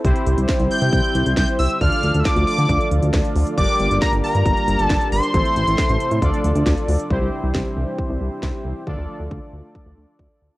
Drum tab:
HH |xxxxxxoxxxxxxxox|xxxxxxoxxxxxxxox|xxxxxxoxxxxxxxox|xxxxxxxxxxxxxxox|
SD |----o-------o---|----o-------o---|----o-------o---|----o-------o---|
BD |o---o---o---o---|o---o---o---o---|o---o---o---o---|o---o---o---o---|

HH |----------------|----------------|
SD |----o-------o---|----------------|
BD |o---o---o---o---|o---o---o---o---|